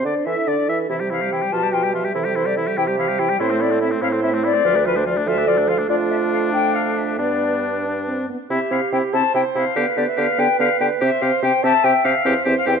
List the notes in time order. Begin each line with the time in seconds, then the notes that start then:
Already playing: C5
0.04 D3 D4 D5
0.25 E3 E4 A4 E5
0.47 D3 D4 D5
0.68 E3 E4 E5
0.89 C3 E3 E4 G4 E5
1.00 G3 G4
1.10 E3 E4 F5
1.21 G3 G4
1.32 E3 E4 G5
1.42 G3 G4
1.52 B2 F3 F4 A5
1.63 G3 G4
1.72 F3 F4 G5
1.84 G3 G4
1.94 F3 F4 E5
2.04 G3 G4
2.15 C3 E3 E4 A4
2.25 G3 G4
2.35 E3 E4 C5
2.46 G3 G4 D5
2.57 E3 E4 E5
2.67 G3 G4
2.77 C3 E3 E4 G4 G5
2.88 G3 G4
2.97 E3 E4 F5
3.08 G3 G4
3.19 E3 E4 G5
3.29 G3 G4
3.39 A2 C4 E4 A4 C5
3.50 A3 C4
3.60 C4 E4 D5
3.71 A3 C4
3.81 C4 E4 E5
3.91 A3 C4
4.02 A2 C4 E4 C5 F5
4.12 A3 C4
4.23 C4 E4 E5
4.33 A3 C4
4.44 C4 E4 D5
4.54 A3 C4
4.64 D2 F3 F4 B4
4.75 A3 D4
4.86 F3 F4 B4
4.96 A3 D4 C5
5.06 F3 F4 D5
5.16 A3 D4
5.26 D2 F3 F4 A4 E5
5.37 A3 D4
5.47 F3 F4 D5
5.58 A3 D4
5.68 F3 F4 F5
5.78 A3 D4
5.89 F2 A3 D4 F4 D5
6.10 E5
6.32 F5
6.53 D4 G5
6.74 F5
6.97 E5
7.18 G2 B3 D4 B4 D5
7.85 D4
8.08 C4
8.29 B3
8.50 C3 C4 E4 G4 E5
8.71 C3 C4 E4 F5
8.92 C3 C4 E4 G5
9.13 C3 C4 E4 C5 A5
9.34 C3 C4 E4 G5
9.55 C3 C4 E4 F5
9.76 D3 B3 G4 B4
9.97 D3 B3 G4 D5
10.07 E5
10.17 D3 B3 G4 F5
10.38 D3 B3 G4 G5
10.59 D3 B3 G4 F5
10.80 D3 B3 G4 G5
11.01 C3 C4 G4 C5 E5
11.22 C3 C4 G4 F5
11.43 C3 C4 G4 G5
11.63 C3 C4 G4 E5 A5
11.84 C3 C4 G4 G5
12.04 C3 C4 G4 F5
12.25 E2 C4 G4 C5
12.45 E2 C4 G4 E5
12.57 F5
12.66 E2 C4 G4 G5